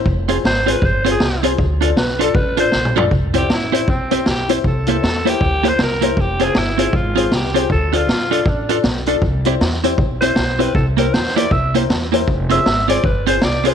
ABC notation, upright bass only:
X:1
M:4/4
L:1/8
Q:"Swing" 1/4=157
K:C
V:1 name="Upright bass" clef=bass
F,,,2 _A,,,2 G,,,2 C,,2 | D,,2 B,,,2 A,,,2 B,,,2 | C,,2 A,,,2 B,,,2 B,,,2 | C,,2 E,,2 D,,2 C,,2 |
F,,,2 G,,,2 _A,,,2 C,,2 | D,,2 B,,,2 A,,,2 B,,,2 | C,,2 E,,2 B,,,2 B,,,2 | C,,2 E,,2 C,,2 E,,2 |
F,,,2 _A,,,2 G,,,2 C,,2 |]